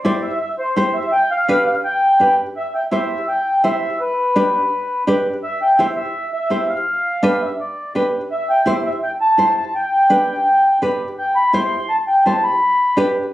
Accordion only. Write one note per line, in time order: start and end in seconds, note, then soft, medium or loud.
0.04 0.21 D5 medium
0.22 0.39 E5 medium
0.41 0.49 E5 medium
0.59 0.75 C5 medium
0.76 0.95 C5 medium
0.94 1.11 E5 medium
1.12 1.31 G5 loud
1.31 1.65 F5 loud
1.66 1.74 F5 medium
1.84 2.34 G5 medium
2.57 2.73 E5 loud
2.75 2.83 G5 medium
2.92 3.25 E5 medium
3.28 3.62 G5 medium
3.64 3.98 E5 medium
4.00 5.04 B4 medium
5.43 5.60 E5 medium
5.62 5.80 G5 medium
5.79 5.87 E5 medium
5.96 6.30 E5 medium
6.34 6.67 E5 loud
6.69 7.37 F5 medium
7.42 7.50 E5 medium
7.60 7.93 D5 medium
8.31 8.49 E5 medium
8.50 8.68 G5 medium
8.68 8.76 E5 medium
8.86 8.94 E5 medium
9.03 9.11 G5 medium
9.21 9.54 A5 loud
9.57 9.73 A5 medium
9.75 10.78 G5 medium
11.18 11.37 G5 medium
11.36 11.52 B5 loud
11.53 11.91 C6 medium
11.89 11.97 A5 medium
12.07 12.24 G5 medium
12.25 12.44 A5 medium
12.44 13.11 B5 medium